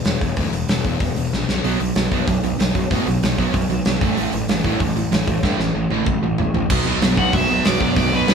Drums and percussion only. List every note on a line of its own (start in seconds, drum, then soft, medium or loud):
0.05 snare loud
0.05 open hi-hat medium
0.21 kick medium
0.21 open hi-hat medium
0.37 kick medium
0.37 open hi-hat medium
0.53 open hi-hat medium
0.69 snare loud
0.69 open hi-hat medium
0.84 kick medium
0.84 open hi-hat medium
1.00 kick medium
1.00 open hi-hat medium
1.16 open hi-hat medium
1.33 snare medium
1.49 snare medium
1.64 open hi-hat medium
1.80 open hi-hat medium
1.95 snare loud
1.95 open hi-hat medium
2.12 kick medium
2.12 open hi-hat soft
2.27 kick loud
2.27 open hi-hat medium
2.44 open hi-hat medium
2.60 snare loud
2.60 open hi-hat medium
2.75 kick medium
2.75 open hi-hat medium
2.91 kick medium
2.91 open hi-hat medium
3.07 open hi-hat medium
3.23 snare loud
3.23 open hi-hat medium
3.38 kick medium
3.38 open hi-hat medium
3.54 kick loud
3.54 open hi-hat medium
3.70 open hi-hat medium
3.85 snare loud
3.85 open hi-hat medium
4.01 kick loud
4.01 open hi-hat medium
4.17 open hi-hat medium
4.33 open hi-hat medium
4.49 snare loud
4.49 open hi-hat medium
4.64 kick medium
4.64 open hi-hat soft
4.80 kick medium
4.80 open hi-hat medium
4.96 open hi-hat soft
5.12 snare loud
5.12 open hi-hat medium
5.28 kick medium
5.28 open hi-hat medium
5.43 kick medium
5.43 snare medium
5.60 snare medium
5.91 high tom medium
6.06 kick loud
6.06 mid tom medium
6.38 floor tom medium
6.54 floor tom medium
6.70 kick loud
6.70 crash loud
7.02 snare loud
7.02 open hi-hat medium
7.17 kick medium
7.33 kick loud
7.33 open hi-hat medium
7.65 snare loud
7.65 open hi-hat medium
7.81 kick medium
7.96 kick loud
7.96 open hi-hat medium
8.28 snare loud
8.28 open hi-hat medium